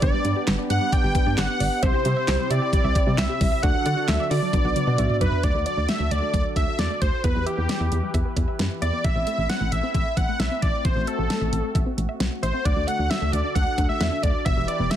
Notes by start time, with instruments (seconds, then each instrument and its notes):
Already playing: analog synth pad G4
0.02 fm bass G1, analog synth pad B3 D4, fm electric piano B3 D4 G4 B4, synth arpeggio sound G4, analog synth lead D5, kick, closed hi-hat
0.14 synth arpeggio sound G3
0.25 fm bass G2, synth arpeggio sound D5, closed hi-hat
0.36 synth arpeggio sound G4
0.47 fm bass G1, synth arpeggio sound G3, snare, clap, closed hi-hat
0.59 synth arpeggio sound D5
0.70 fm bass G2, synth arpeggio sound G4, analog synth lead F#5, closed hi-hat
0.81 synth arpeggio sound G3
0.92 synth arpeggio sound D5, analog synth lead G5, kick, closed hi-hat
1.04 fm bass G1, synth arpeggio sound G4
1.15 synth arpeggio sound G3, fm electric piano B3 D4 G4 B4, kick, closed hi-hat
1.27 fm bass G2, synth arpeggio sound D5
1.38 fm bass G1, synth arpeggio sound G4, analog synth lead F#5, snare, clap, closed hi-hat
1.60 fm bass G1, synth arpeggio sound D5, open hi-hat
1.82 fm bass C2, analog synth pad C3 C4 E4, fm electric piano C4 E4 G4 C5, analog synth lead C5, synth arpeggio sound E5, kick, closed hi-hat
1.94 synth arpeggio sound G4
2.05 fm bass C3, synth arpeggio sound G3, closed hi-hat
2.17 synth arpeggio sound E5
2.28 fm bass C2, synth arpeggio sound G4, snare, clap, closed hi-hat
2.39 synth arpeggio sound G3
2.50 fm bass C3, analog synth lead D5, synth arpeggio sound E5, closed hi-hat
2.62 synth arpeggio sound G4
2.73 synth arpeggio sound G3, kick, closed hi-hat
2.84 fm bass C2, synth arpeggio sound E5
2.95 synth arpeggio sound G4, kick, closed hi-hat
3.07 fm bass C3, synth arpeggio sound G3
3.17 fm bass C2, analog synth lead E5, synth arpeggio sound E5, snare, clap, closed hi-hat
3.29 synth arpeggio sound G4
3.41 fm bass C2, synth arpeggio sound G3, kick, open hi-hat
3.52 synth arpeggio sound E5
3.63 fm bass D2, analog synth pad D3 D4 F#4 A4, fm electric piano D4 F#4 A4 D5, synth arpeggio sound F#4, analog synth lead F#5, kick, closed hi-hat
3.75 synth arpeggio sound F#3
3.86 fm bass D3, synth arpeggio sound D5, closed hi-hat
3.97 synth arpeggio sound F#4
4.08 fm bass D2, synth arpeggio sound F#3, analog synth lead E5, snare, clap, closed hi-hat
4.20 synth arpeggio sound D5
4.30 fm bass D3, synth arpeggio sound F#4, analog synth lead D5, open hi-hat
4.42 synth arpeggio sound F#3
4.53 fm bass B1, analog synth pad B3 F#4, fm electric piano D4 F#4 B4 D5, synth arpeggio sound D5, kick, closed hi-hat, high tom
4.65 fm bass B1, synth arpeggio sound F#4
4.76 synth arpeggio sound F#3, closed hi-hat, mid tom
4.87 fm bass B2, synth arpeggio sound D5
4.98 fm bass B1, synth arpeggio sound F#4, fm electric piano E5, closed hi-hat, mid tom
5.10 mid tom
5.21 fm bass B1, analog synth lead B4, synth arpeggio sound D5, closed hi-hat, floor tom
5.32 floor tom
5.43 fm bass D2, analog synth pad D3 D4 F#4 A4, analog synth lead D5, synth arpeggio sound D5, kick, closed hi-hat
5.55 fm bass D2, synth arpeggio sound A3
5.66 synth arpeggio sound F#3, analog synth lead D5, closed hi-hat
5.77 fm bass D2, synth arpeggio sound D5
5.89 synth arpeggio sound A3, analog synth lead E5, snare, closed hi-hat
6.00 fm bass D2, synth arpeggio sound F#3
6.11 fm bass D2, analog synth lead D5, synth arpeggio sound D5, closed hi-hat
6.22 synth arpeggio sound A3
6.34 fm bass D2, synth arpeggio sound F#3, analog synth lead D5, kick, closed hi-hat
6.45 synth arpeggio sound D5
6.56 fm bass D2, synth arpeggio sound A3, analog synth lead E5, kick, closed hi-hat
6.67 synth arpeggio sound F#3
6.79 fm bass E2, synth arpeggio sound D5, analog synth lead D5, snare, closed hi-hat
6.90 synth arpeggio sound A3
7.01 fm bass D2, analog synth lead C5, kick, closed hi-hat
7.24 fm bass E2, analog synth pad E3 E4 G4 B4, synth arpeggio sound B3, analog synth lead B4, kick, closed hi-hat
7.35 fm bass E2, synth arpeggio sound G3
7.46 analog synth lead G4, synth arpeggio sound E5, closed hi-hat
7.58 fm bass E2, synth arpeggio sound B3
7.69 synth arpeggio sound G3, snare, closed hi-hat
7.80 fm bass E2, synth arpeggio sound E5
7.92 fm bass E2, synth arpeggio sound B3, closed hi-hat
8.03 synth arpeggio sound G3
8.14 fm bass E2, synth arpeggio sound E5, kick, closed hi-hat
8.25 synth arpeggio sound B3
8.37 fm bass E2, synth arpeggio sound G3, kick, closed hi-hat
8.48 synth arpeggio sound E5
8.59 fm bass F#2, synth arpeggio sound B3, snare, closed hi-hat
8.82 fm bass E2, analog synth lead D5, synth arpeggio sound E5, closed hi-hat
8.93 synth arpeggio sound B3
9.04 fm bass A1, analog synth pad A3 C4 E4, analog synth lead E5, synth arpeggio sound E5, kick, closed hi-hat
9.16 fm bass A1, synth arpeggio sound C4
9.27 synth arpeggio sound A3, analog synth lead E5, closed hi-hat
9.38 fm bass A1, synth arpeggio sound E5
9.49 synth arpeggio sound C4, analog synth lead F#5, snare, closed hi-hat
9.61 fm bass A1, synth arpeggio sound A3
9.72 fm bass A1, analog synth lead E5, synth arpeggio sound E5, closed hi-hat
9.83 synth arpeggio sound C4
9.94 fm bass A1, synth arpeggio sound A3, analog synth lead E5, kick, closed hi-hat
10.06 synth arpeggio sound E5
10.17 fm bass A1, synth arpeggio sound C4, analog synth lead F#5, kick, closed hi-hat
10.29 synth arpeggio sound A3
10.39 fm bass B1, analog synth lead E5, synth arpeggio sound E5, snare, closed hi-hat
10.51 synth arpeggio sound C4
10.62 fm bass A1, analog synth lead D5, kick, closed hi-hat
10.85 fm bass A1, synth arpeggio sound C4, analog synth pad F#4, analog synth lead C5, kick, closed hi-hat
10.96 fm bass A1, synth arpeggio sound A3
11.07 analog synth lead A4, synth arpeggio sound E5, closed hi-hat
11.19 fm bass A1, synth arpeggio sound C4
11.30 synth arpeggio sound A3, snare, closed hi-hat
11.41 fm bass A1, synth arpeggio sound E5
11.53 fm bass A1, synth arpeggio sound C4, closed hi-hat
11.64 synth arpeggio sound A3
11.75 fm bass A1, synth arpeggio sound E5, kick, closed hi-hat
11.86 synth arpeggio sound C4
11.98 fm bass A1, synth arpeggio sound A3, closed hi-hat
12.09 synth arpeggio sound E5
12.20 fm bass B1, synth arpeggio sound C4, snare, closed hi-hat
12.43 fm bass A1, analog synth lead C5, synth arpeggio sound E5, closed hi-hat
12.54 synth arpeggio sound C4
12.65 fm bass D2, analog synth pad D3 D4 A4, analog synth lead D5, synth arpeggio sound F#5, kick, closed hi-hat
12.76 fm bass D2, synth arpeggio sound D4
12.87 synth arpeggio sound A3, analog synth lead F#5, closed hi-hat
12.99 fm bass D2, synth arpeggio sound F#5
13.10 synth arpeggio sound D4, analog synth lead E5, snare, closed hi-hat
13.22 fm bass D2, synth arpeggio sound A3
13.32 fm bass D2, analog synth lead D5, synth arpeggio sound F#5, closed hi-hat
13.44 synth arpeggio sound D4
13.55 fm bass D2, synth arpeggio sound A3, analog synth lead F#5, kick, closed hi-hat
13.67 synth arpeggio sound F#5
13.78 fm bass D2, synth arpeggio sound D4, kick, closed hi-hat
13.89 synth arpeggio sound A3, analog synth lead E5
14.01 fm bass E2, synth arpeggio sound F#5, snare, closed hi-hat
14.12 synth arpeggio sound D4
14.23 fm bass D2, analog synth lead D5, kick, closed hi-hat
14.45 fm bass E1, analog synth pad E3 E4 G4 B4, synth arpeggio sound B3, analog synth lead E5, kick, closed hi-hat
14.57 fm bass E1, synth arpeggio sound G3
14.68 analog synth lead D5, synth arpeggio sound E5, closed hi-hat
14.80 fm bass E1, synth arpeggio sound B3
14.90 synth arpeggio sound G3, analog synth lead E5, snare, closed hi-hat